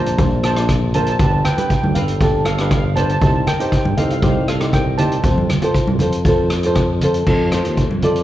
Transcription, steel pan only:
0.00 0.42 C5 medium
0.00 0.41 A5 medium
0.45 0.92 C5 medium
0.45 0.93 A5 medium
0.95 1.02 C5 medium
0.95 1.01 A5 medium
1.02 1.08 A5 medium
1.10 1.17 A5 medium
1.18 1.24 A5 medium
1.25 1.32 A5 medium
1.33 1.40 A5 medium
1.45 1.52 B4 medium
1.45 1.52 G5 medium
1.53 1.60 G5 medium
1.61 1.67 G5 medium
1.68 1.73 G5 medium
1.74 1.80 G5 medium
1.82 1.89 G5 medium
1.95 2.43 A4 medium
1.95 2.42 F5 medium
2.46 2.53 A4 medium
2.46 2.52 F5 medium
2.54 2.60 F5 medium
2.61 2.67 F5 medium
2.68 2.76 F5 medium
2.77 2.83 F5 medium
2.84 2.91 F5 medium
2.96 3.04 C5 medium
2.96 3.02 A5 medium
3.03 3.10 A5 medium
3.11 3.18 A5 medium
3.19 3.24 A5 medium
3.25 3.33 A5 medium
3.34 3.42 A5 medium
3.47 3.55 A#4 medium
3.47 3.53 G5 medium
3.54 3.59 G5 medium
3.60 3.67 G5 medium
3.68 3.76 G5 medium
3.77 3.84 G5 medium
3.85 3.92 G5 medium
3.97 4.05 A4 medium
3.97 4.03 F5 medium
4.04 4.11 F5 medium
4.12 4.18 F5 medium
4.19 4.25 F5 medium
4.27 4.34 F5 medium
4.35 4.42 F5 medium
4.48 4.72 A4 medium
4.48 4.72 F5 medium
4.73 4.98 A#4 medium
4.73 5.00 G5 medium
4.98 6.72 C5 medium
4.98 6.72 A5 medium

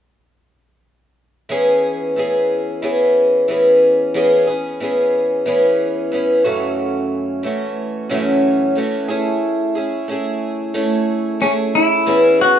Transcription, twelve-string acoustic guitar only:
1.49 2.16 E3 medium
1.49 2.16 B3 medium
1.49 2.18 C#4 medium
1.49 2.17 G#4 medium
2.16 2.82 E3 soft
2.16 2.82 B3 soft
2.16 2.83 C#4 soft
2.16 2.83 G#4 medium
2.82 3.48 E3 medium
2.82 3.48 B3 medium
2.82 3.50 C#4 medium
2.82 3.50 G#4 medium
3.48 4.14 E3 medium
3.48 4.14 B3 medium
3.48 4.15 C#4 medium
3.48 4.15 G#4 medium
4.14 4.48 E3 medium
4.14 4.48 B3 medium
4.14 4.48 C#4 medium
4.14 4.46 G#4 medium
4.47 4.80 B3 soft
4.47 4.81 C#4 soft
4.47 4.81 G#4 soft
4.80 5.45 E3 soft
4.80 5.45 B3 soft
4.80 5.47 C#4 soft
4.80 5.47 G#4 medium
5.46 6.11 E3 medium
5.46 6.12 B3 medium
5.46 6.13 C#4 medium
5.46 6.14 G#4 medium
6.12 6.45 E3 medium
6.12 6.45 B3 soft
6.12 6.44 C#4 medium
6.12 6.44 G#4 medium
6.44 7.45 F#2 soft
6.44 7.45 C#3 soft
6.44 7.43 E3 medium
6.44 7.44 A3 medium
6.44 7.45 C#4 medium
6.44 7.44 F#4 medium
7.43 8.10 E3 soft
7.43 8.11 A3 medium
7.43 8.11 C#4 soft
7.43 8.11 F#4 medium
8.10 8.76 F#2 medium
8.10 8.77 C#3 medium
8.10 8.75 E3 medium
8.10 8.76 A3 medium
8.10 8.78 C#4 medium
8.10 8.78 F#4 medium
8.75 9.09 E3 soft
8.75 9.10 A3 medium
8.75 9.09 C#4 medium
8.75 9.08 F#4 medium
9.08 9.76 A3 soft
9.08 9.77 C#4 medium
9.08 9.76 E4 medium
9.08 9.75 G#4 medium
9.75 10.08 C#4 soft
9.75 10.09 E4 soft
9.75 10.09 G#4 soft
10.08 10.73 A3 soft
10.08 10.74 C#4 medium
10.08 10.75 E4 medium
10.08 10.76 G#4 medium
10.74 11.39 A3 medium
10.74 11.41 C#4 medium
10.74 11.42 E4 medium
10.74 11.43 G#4 medium
11.40 12.06 A3 medium
11.40 12.07 C#4 medium
11.40 12.07 E4 medium
11.40 12.08 G#4 medium
12.06 12.40 E3 medium
12.06 12.40 B3 medium
12.06 12.39 C#4 medium
12.06 12.38 G#4 medium
12.39 12.59 B3 soft
12.39 12.59 C#4 soft
12.39 12.59 G#4 medium

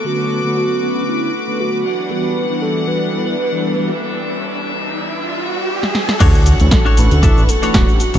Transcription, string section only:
0.00 1.81 B3 medium
0.00 1.81 F#4 medium
0.00 1.81 D6 medium
0.05 1.83 B4 medium
1.84 6.17 E3 medium
1.84 6.16 G3 medium
1.84 6.16 D4 medium
1.84 3.88 F#5 medium
3.90 6.18 E5 medium
6.20 8.19 A4 medium
6.20 8.19 F#5 medium
6.20 8.19 C#6 medium

